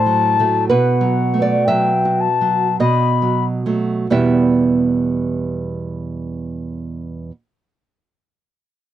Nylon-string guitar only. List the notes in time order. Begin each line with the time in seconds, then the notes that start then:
Already playing: A2 C5
0.06 F#3
0.39 F#3 A3
0.70 B2 B4
1.01 F#3
1.34 A3
1.42 D5
1.68 F#3 E5
2.05 F#4
2.41 F#3
2.80 B2 D#5
3.22 F#3
3.66 F#3 A3
4.10 E2 B2 G3 B3 E4 G4 E5